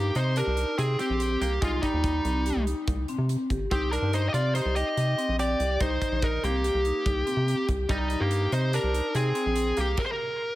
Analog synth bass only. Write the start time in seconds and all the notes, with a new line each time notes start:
Already playing: G2
0.15 C3
0.47 C2
0.78 C3
1.10 A#1
1.41 C2
1.62 C2
1.94 D#2
2.25 C2
2.56 C2
2.87 C2
3.18 C3
3.50 G1
3.72 C2
4.02 G2
4.34 C3
4.65 C2
4.97 C3
5.29 A#1
5.60 C2
5.81 C2
6.12 A#1
6.43 C2
6.74 C2
7.06 C2
7.37 C3
7.69 C2
7.89 C2
8.21 G2
8.52 C3
8.83 C2
9.15 C3
9.46 A#1
9.78 C2